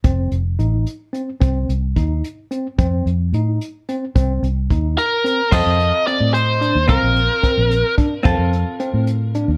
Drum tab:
CC |-----|-----|-----|-----|
HH |xxxxx|xxxxx|xxxxx|xxxxx|
BD |o----|o-o--|o----|o-o--|

CC |x----|-----|-----|
HH |-xxxx|xxxxx|xxxxx|
BD |o----|o-o-o|o----|